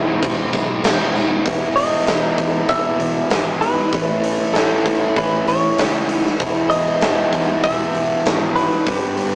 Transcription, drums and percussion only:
0.22 kick, tambourine, crash
0.53 kick, tambourine
0.84 snare, tambourine, crash
1.15 tambourine
1.46 kick, open hi-hat
1.77 open hi-hat
2.07 snare, open hi-hat
2.38 kick, open hi-hat
2.69 kick, open hi-hat
3.00 open hi-hat
3.30 snare, open hi-hat
3.62 open hi-hat
3.93 kick, open hi-hat
4.24 open hi-hat
4.55 snare, open hi-hat
4.86 kick, open hi-hat
5.16 kick, open hi-hat
5.47 open hi-hat
5.78 snare, open hi-hat
6.09 open hi-hat
6.26 snare
6.40 kick, open hi-hat
6.71 open hi-hat
7.01 snare, open hi-hat
7.33 kick, open hi-hat
7.64 kick, open hi-hat
7.95 open hi-hat
8.26 snare, open hi-hat
8.56 open hi-hat
8.87 kick, open hi-hat
9.17 open hi-hat

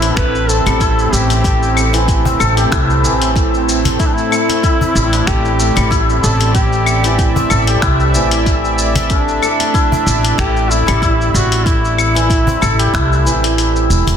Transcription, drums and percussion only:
0.02 closed hi-hat, shaker
0.17 finger snap, kick, closed hi-hat, shaker
0.35 shaker
0.49 shaker
0.66 cajon slap, closed hi-hat, claves, shaker
0.80 kick, closed hi-hat, shaker
0.99 shaker
1.13 shaker
1.30 cajon slap, closed hi-hat, shaker
1.44 kick, cajon slap, closed hi-hat, shaker
1.63 shaker
1.77 claves, shaker
1.93 cajon slap, closed hi-hat, shaker
2.08 kick, closed hi-hat, shaker
2.25 cajon bass, shaker
2.40 claves, shaker
2.57 closed hi-hat, shaker
2.72 finger snap, kick, closed hi-hat, shaker
2.90 shaker
3.05 shaker
3.22 closed hi-hat, shaker
3.36 kick, closed hi-hat, shaker
3.54 shaker
3.69 shaker
3.85 cajon bass, closed hi-hat, shaker
4.00 kick, closed hi-hat, shaker
4.18 shaker
4.32 claves, shaker
4.49 cajon slap, closed hi-hat, shaker
4.63 kick, closed hi-hat, shaker
4.81 cajon bass, shaker
4.96 shaker
5.13 closed hi-hat, shaker
5.27 finger snap, kick, closed hi-hat, shaker
5.45 shaker
5.60 shaker
5.77 cajon slap, closed hi-hat, claves, shaker
5.91 kick, closed hi-hat, shaker
6.10 shaker
6.24 shaker
6.40 cajon slap, closed hi-hat, shaker
6.55 kick, closed hi-hat, shaker
6.73 shaker
6.86 claves, shaker
7.04 cajon slap, closed hi-hat, shaker
7.19 kick, closed hi-hat, shaker
7.36 cajon bass, shaker
7.50 claves, shaker
7.67 closed hi-hat, shaker
7.82 finger snap, kick, closed hi-hat, shaker
8.00 shaker
8.15 shaker
8.31 closed hi-hat, shaker
8.46 kick, closed hi-hat, shaker
8.64 shaker
8.78 shaker
8.95 cajon bass, closed hi-hat, shaker
9.10 kick, closed hi-hat, shaker
9.28 shaker
9.43 claves, shaker
9.60 cajon slap, closed hi-hat, shaker
9.74 kick, closed hi-hat, shaker
9.92 cajon bass, shaker
10.07 shaker
10.25 closed hi-hat, shaker
10.38 finger snap, kick, closed hi-hat, shaker
10.57 shaker
10.71 shaker
10.88 cajon slap, closed hi-hat, claves, shaker
11.02 kick, closed hi-hat, shaker
11.21 shaker
11.35 shaker
11.52 cajon slap, closed hi-hat, shaker
11.66 kick, cajon slap, closed hi-hat, shaker
11.85 shaker
11.98 claves, shaker
12.15 cajon slap, closed hi-hat, shaker
12.30 kick, closed hi-hat, shaker
12.47 cajon bass, shaker
12.62 claves, shaker
12.79 closed hi-hat, shaker
12.94 finger snap, kick, closed hi-hat, shaker
13.12 shaker
13.26 cajon slap, shaker
13.44 closed hi-hat, shaker
13.58 closed hi-hat, shaker
13.76 shaker
13.91 shaker
14.07 cajon bass, closed hi-hat, shaker

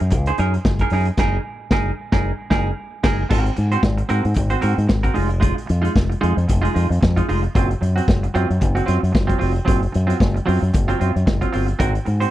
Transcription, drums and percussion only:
0.00 closed hi-hat
0.10 kick, closed hi-hat
0.26 closed hi-hat
0.38 closed hi-hat
0.54 closed hi-hat
0.65 kick, snare
0.79 kick, closed hi-hat
0.90 open hi-hat
1.05 closed hi-hat
1.17 kick, snare, crash
1.71 kick, snare
2.12 kick, snare
2.51 kick, snare
3.03 kick, snare, crash
3.30 kick, crash
3.46 closed hi-hat
3.56 closed hi-hat
3.72 closed hi-hat
3.83 kick, snare
3.98 closed hi-hat
4.09 closed hi-hat
4.25 closed hi-hat
4.34 kick, closed hi-hat
4.50 closed hi-hat
4.62 closed hi-hat
4.78 closed hi-hat
4.89 kick, snare
5.03 kick, closed hi-hat
5.15 open hi-hat
5.30 closed hi-hat
5.42 kick, closed hi-hat
5.58 closed hi-hat
5.69 closed hi-hat
5.85 closed hi-hat
5.96 kick, snare
6.12 closed hi-hat
6.23 closed hi-hat
6.38 closed hi-hat
6.49 kick, closed hi-hat
6.65 closed hi-hat
6.76 closed hi-hat
6.92 closed hi-hat
7.03 kick, snare
7.17 kick, closed hi-hat
7.29 open hi-hat
7.44 closed hi-hat
7.55 kick, closed hi-hat
7.71 closed hi-hat
7.83 closed hi-hat
7.98 closed hi-hat
8.08 kick, snare
8.24 closed hi-hat
8.35 closed hi-hat
8.51 closed hi-hat
8.61 kick, closed hi-hat
8.76 closed hi-hat
8.88 closed hi-hat
9.04 closed hi-hat
9.15 kick, snare
9.29 kick, closed hi-hat
9.41 open hi-hat
9.56 closed hi-hat
9.68 kick, closed hi-hat
9.83 closed hi-hat
9.94 closed hi-hat
10.10 closed hi-hat
10.20 kick, snare
10.37 closed hi-hat
10.48 open hi-hat
10.63 closed hi-hat
10.74 kick, closed hi-hat
10.89 closed hi-hat
11.01 closed hi-hat
11.16 closed hi-hat
11.27 kick, snare
11.42 kick, closed hi-hat
11.53 open hi-hat
11.68 closed hi-hat
11.80 kick, closed hi-hat
11.95 closed hi-hat
12.06 closed hi-hat
12.21 closed hi-hat

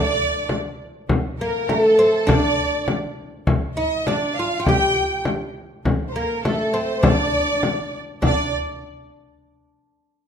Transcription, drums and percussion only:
0.49 frame drum
1.09 frame drum
1.69 frame drum
2.29 frame drum
2.88 frame drum
3.47 frame drum
4.07 frame drum
4.66 frame drum
5.25 frame drum
5.85 frame drum
6.45 frame drum
7.03 frame drum
7.63 frame drum
8.23 frame drum

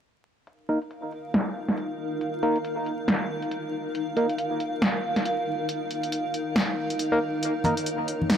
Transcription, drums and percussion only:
0.47 closed hi-hat
0.69 closed hi-hat
0.82 closed hi-hat
0.91 closed hi-hat
1.12 closed hi-hat
1.34 snare, closed hi-hat
1.69 snare, closed hi-hat
1.78 closed hi-hat
2.21 closed hi-hat
2.43 closed hi-hat
2.56 closed hi-hat
2.65 closed hi-hat
2.86 closed hi-hat
3.08 snare, closed hi-hat
3.42 closed hi-hat
3.51 closed hi-hat
3.95 closed hi-hat
4.17 closed hi-hat
4.29 closed hi-hat
4.38 closed hi-hat
4.60 closed hi-hat
4.82 snare, closed hi-hat
5.16 snare, closed hi-hat
5.25 closed hi-hat
5.69 closed hi-hat
5.91 closed hi-hat
6.03 closed hi-hat
6.12 closed hi-hat
6.34 closed hi-hat
6.56 snare, closed hi-hat
6.90 closed hi-hat
6.99 closed hi-hat
7.43 closed hi-hat
7.64 closed hi-hat, high conga
7.77 closed hi-hat
7.86 closed hi-hat
8.08 closed hi-hat
8.22 high conga
8.30 snare, closed hi-hat

